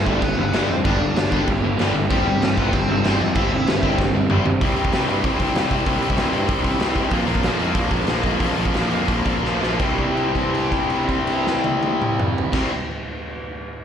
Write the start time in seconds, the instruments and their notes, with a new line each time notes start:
Already playing: overdriven electric guitar G2 D3 G3 A3 A4
0.05 picked electric bass G1, distorted electric guitar G2 D3 G3 B3 D4, overdriven electric guitar G4, kick
0.22 picked electric bass G1, distorted electric guitar G2 D3 G3 B3, overdriven electric guitar B3 B4, kick, crash
0.37 picked electric bass G1, distorted electric guitar G2 D3 G3 B3, overdriven electric guitar G2 D3 G3 B3 B4
0.52 picked electric bass G1, distorted electric guitar G2 D3 G3 B3 D4, overdriven electric guitar G2 D3 G3, snare, crash
0.68 picked electric bass F2, distorted electric guitar G2 D3 G3 B3, overdriven electric guitar C4 C5
0.83 picked electric bass G1, overdriven electric guitar G2 D3 G3 D4 D5, distorted electric guitar G2 D3 G3 B3 D4, kick, crash
1.00 picked electric bass G1, distorted electric guitar G2 D3 G3 B3
1.15 picked electric bass G1, distorted electric guitar G2 D3 G3 B3, snare, crash
1.30 picked electric bass G1, distorted electric guitar G2 D3 G3 B3 D4, kick
1.46 picked electric bass G1, distorted electric guitar G2 D3 G3 B3, kick, crash
1.62 picked electric bass G1, distorted electric guitar G2 D3 G3 B3, overdriven electric guitar G2 D3 G3
1.77 picked electric bass G1, overdriven electric guitar G2 D3 G3, distorted electric guitar G2 D3 G3 B3 D4, snare, crash
1.94 picked electric bass G1, distorted electric guitar G2 D3 G3 B3
2.09 picked electric bass G1, overdriven electric guitar C3 G3 C4 G4, distorted electric guitar C3 G3 C4 E4, kick, crash
2.26 picked electric bass G1, distorted electric guitar C3 G3 C4
2.41 picked electric bass G1, distorted electric guitar C3 G3 C4, snare, crash
2.56 picked electric bass G1, distorted electric guitar C3 G3 C4 E4, overdriven electric guitar B3 B4, kick
2.72 picked electric bass G1, distorted electric guitar C3 G3 C4, overdriven electric guitar C4 C5, kick, crash
2.88 picked electric bass G1, distorted electric guitar C3 G3 C4, overdriven electric guitar C3 G3 C4 C5
3.03 picked electric bass G1, overdriven electric guitar C3 G3 C4 C5, distorted electric guitar C3 G3 C4 E4, snare, crash
3.20 picked electric bass F2, distorted electric guitar C3 G3 C4, overdriven electric guitar D4 D5
3.35 picked electric bass G1, overdriven electric guitar C3 G3 C4 E4 E5, distorted electric guitar C3 G3 C4 E4, kick, crash
3.51 picked electric bass G1, distorted electric guitar C3 G3 C4
3.66 picked electric bass G1, distorted electric guitar C3 G3 C4, snare, crash
3.82 picked electric bass G1, distorted electric guitar C3 G3 C4 E4, kick
3.98 picked electric bass G1, distorted electric guitar C3 G3 C4, kick, snare
4.13 picked electric bass G1, distorted electric guitar C3 G3 C4, overdriven electric guitar C3 G3 C4
4.29 picked electric bass G1, overdriven electric guitar C3 G3 C4, distorted electric guitar C3 G3 C4 E4, mid tom
4.45 picked electric bass G1, distorted electric guitar C3 G3 C4, floor tom
4.61 picked electric bass C2, distorted electric guitar C3 G3 C4 E4, kick, open hi-hat
4.76 picked electric bass C2, distorted electric guitar C3 G3 C4 E4, open hi-hat
4.85 kick
4.92 picked electric bass C2, distorted electric guitar C3 G3 C4 E4, snare, open hi-hat
5.08 picked electric bass G2, distorted electric guitar C3 G3 C4 E4, open hi-hat
5.24 picked electric bass C2, distorted electric guitar C3 G3 C4 E4, kick, open hi-hat
5.38 picked electric bass C2, distorted electric guitar C3 G3 C4 E4, kick, open hi-hat
5.55 picked electric bass C2, distorted electric guitar C3 G3 C4 E4, snare, open hi-hat
5.71 picked electric bass C2, distorted electric guitar C3 G3 C4 E4, kick, open hi-hat
5.86 picked electric bass C2, distorted electric guitar C3 G3 C4 E4, kick, open hi-hat
6.01 picked electric bass C2, distorted electric guitar C3 G3 C4 E4, open hi-hat
6.10 kick
6.17 picked electric bass C2, distorted electric guitar C3 G3 C4 E4, snare, open hi-hat
6.32 picked electric bass G2, distorted electric guitar C3 G3 C4 E4, open hi-hat
6.48 picked electric bass C2, distorted electric guitar C3 G3 C4 E4, kick, open hi-hat
6.64 picked electric bass C2, distorted electric guitar C3 G3 C4 E4, kick, open hi-hat
6.79 picked electric bass C2, distorted electric guitar C3 G3 C4 E4, snare, open hi-hat
6.95 picked electric bass C2, distorted electric guitar C3 G3 C4 E4, kick, open hi-hat
7.10 picked electric bass A#1, distorted electric guitar A#2 D3 F3 A#3 D4, kick, open hi-hat
7.26 picked electric bass A#1, distorted electric guitar A#2 D3 F3 A#3 D4, open hi-hat
7.35 kick
7.42 picked electric bass A#1, distorted electric guitar A#2 D3 F3 A#3 D4, snare, open hi-hat
7.58 picked electric bass F2, distorted electric guitar A#2 D3 F3 A#3 D4, open hi-hat
7.74 picked electric bass A#1, distorted electric guitar A#2 D3 F3 A#3 D4, kick, open hi-hat
7.90 picked electric bass A#1, distorted electric guitar A#2 D3 F3 A#3 D4, kick, open hi-hat
8.07 picked electric bass A#1, distorted electric guitar A#2 D3 F3 A#3 D4, snare, open hi-hat
8.23 picked electric bass A#1, distorted electric guitar A#2 D3 F3 A#3 D4, kick, open hi-hat
8.40 picked electric bass A#1, distorted electric guitar A#2 D3 F3 A#3 D4, kick, open hi-hat
8.57 picked electric bass A#1, distorted electric guitar A#2 D3 F3 A#3 D4, open hi-hat
8.65 kick
8.73 picked electric bass A#1, distorted electric guitar A#2 D3 F3 A#3 D4, snare, open hi-hat
8.90 picked electric bass F2, distorted electric guitar A#2 D3 F3 A#3 D4, open hi-hat
9.07 picked electric bass A#1, distorted electric guitar A#2 D3 F3 A#3 D4, kick, open hi-hat
9.24 picked electric bass A#1, distorted electric guitar A#2 D3 F3 A#3 D4, kick, open hi-hat
9.42 picked electric bass A#1, distorted electric guitar A#2 D3 F3 A#3 D4, snare
9.61 picked electric bass A#1, distorted electric guitar A#2 D3 F3 A#3 D4, snare
9.78 picked electric bass C2, distorted electric guitar C3 G3 C4, kick, crash
9.83 distorted electric guitar E4
9.98 kick, crash
10.17 crash
10.35 kick, crash
10.54 crash
10.72 kick, crash
10.90 crash
11.09 kick, crash
11.27 crash
11.47 snare
11.64 high tom
11.83 high tom
12.02 mid tom
12.19 mid tom
12.38 floor tom
12.51 picked electric bass C2, distorted electric guitar C3 G3 C4, kick, snare, crash
12.55 distorted electric guitar E4